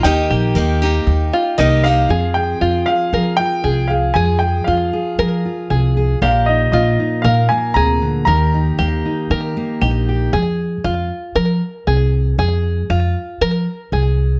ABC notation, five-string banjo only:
X:1
M:4/4
L:1/8
Q:1/4=117
K:Fdor
V:1 name="Five-string banjo"
E G2 z2 F E2 | A2 F2 B2 A2 | A2 F2 B2 A2 | G2 F2 B2 A2 |
B2 G2 B2 G2 | A2 F2 B2 A2 | A2 F2 B2 A2 |]